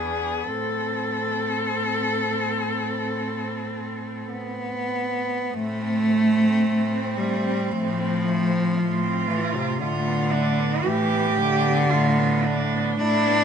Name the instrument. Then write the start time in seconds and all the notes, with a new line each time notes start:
cello
Already playing: E2 B3 D4 G#4
0.46 A2 C4 A4
4.31 B3
5.52 A2 A3 C4
5.82 C4
6.11 A3
6.38 C4
6.65 A2 A3
6.93 C4
7.18 G3 A3
7.45 C4
7.71 A2 F3 A3
7.99 C4
8.25 A3
8.51 C4
8.77 A2 A3 F4
9.02 C4
9.28 E3 A3
9.54 C3 C4
9.80 A2 D3 A3 F4
10.07 B3
10.32 A3 D4
10.59 B3
10.84 A2 E3 A3 G4
11.13 B3
11.38 D3 A3
11.65 B3
11.90 A2 A3 F4
12.18 B3
12.45 A3 D4
12.75 B3
12.99 A2 A3 D4 E4
13.26 B3